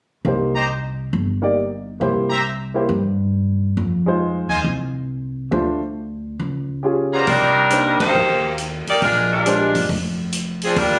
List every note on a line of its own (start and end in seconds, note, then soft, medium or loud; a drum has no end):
0.25 1.09 C2 medium
0.25 0.52 A#3 soft
0.25 0.53 D#4 soft
0.25 0.53 G4 soft
0.25 0.53 C5 soft
0.54 0.64 G4 medium
0.54 0.64 C5 medium
0.54 0.64 D#5 medium
0.54 0.64 A#5 medium
1.13 1.97 G1 medium
1.42 1.55 A#3 medium
1.42 1.56 D#4 soft
1.42 1.56 G4 soft
1.42 1.56 D5 medium
2.00 2.85 C2 medium
2.00 2.27 A#3 soft
2.00 2.27 E4 soft
2.00 2.28 G4 soft
2.00 2.28 C5 medium
2.29 2.40 G4 medium
2.29 2.40 C5 medium
2.29 2.40 E5 medium
2.29 2.40 A#5 medium
2.74 2.88 A#3 soft
2.74 2.88 E4 soft
2.74 2.88 G4 soft
2.74 2.88 C5 soft
2.89 3.73 G2 medium
3.77 4.46 F2 medium
4.06 4.62 G#3 medium
4.06 4.62 D#4 medium
4.06 4.62 F4 medium
4.06 4.63 C5 medium
4.49 4.63 D#2 medium
4.49 4.60 F4 medium
4.49 4.59 C5 medium
4.49 4.60 D#5 medium
4.49 4.59 G#5 medium
4.64 5.48 C2 medium
5.51 6.35 D2 medium
5.51 5.78 A3 soft
5.51 5.78 D4 soft
5.51 5.79 F4 soft
5.51 5.79 C5 medium
6.40 7.23 C#2 medium
6.83 7.27 C#4 soft
6.83 7.28 F4 soft
6.83 7.27 G4 soft
6.83 7.28 G#4 medium
7.13 7.26 F3 medium
7.13 7.26 B3 medium
7.13 7.26 C#4 medium
7.13 7.68 F4 medium
7.13 7.26 G#4 medium
7.13 7.68 C5 medium
7.13 7.68 D5 medium
7.13 7.68 A#5 medium
7.27 7.96 C2 medium
7.27 7.97 G3 medium
7.27 7.96 D4 medium
7.27 7.96 D#4 medium
7.27 7.96 A#4 medium
7.27 kick soft
7.27 open hi-hat soft
7.70 7.97 A#3 soft
7.70 7.97 D4 soft
7.70 7.98 D#4 soft
7.70 7.98 C5 medium
7.70 closed hi-hat medium
8.00 8.55 A#3 medium
8.00 8.55 D#4 medium
8.00 8.55 G4 medium
8.00 8.55 C5 loud
8.00 muted upright bass stroke soft
8.00 kick medium
8.00 ride medium
8.15 8.84 D#2 medium
8.58 closed hi-hat medium
8.87 9.02 A#3 medium
8.87 9.02 D#4 medium
8.87 9.02 G4 medium
8.87 9.02 D5 loud
8.87 muted upright bass stroke soft
8.87 open hi-hat soft
9.02 9.71 A#1 medium
9.02 9.30 G#3 medium
9.02 9.30 D4 medium
9.02 9.30 F4 medium
9.02 9.30 A#4 medium
9.02 kick soft
9.02 open hi-hat soft
9.33 9.87 G#3 medium
9.33 9.86 D4 medium
9.33 9.86 F4 medium
9.33 9.86 A#4 medium
9.46 9.72 G#3 medium
9.46 9.72 D4 medium
9.46 9.73 G4 medium
9.46 9.73 C5 medium
9.46 closed hi-hat medium
9.75 9.88 G#1 medium
9.75 open hi-hat soft
9.89 10.73 F1 medium
9.89 kick soft
9.89 open hi-hat soft
10.32 closed hi-hat medium
10.62 10.77 F3 medium
10.62 10.77 C4 medium
10.62 10.77 D4 medium
10.62 10.77 G#4 medium
10.62 open hi-hat soft
10.76 10.99 D#2 medium
10.76 10.99 G3 medium
10.76 10.99 D4 medium
10.76 10.99 F4 medium
10.76 10.99 A#4 medium
10.76 kick soft
10.76 open hi-hat soft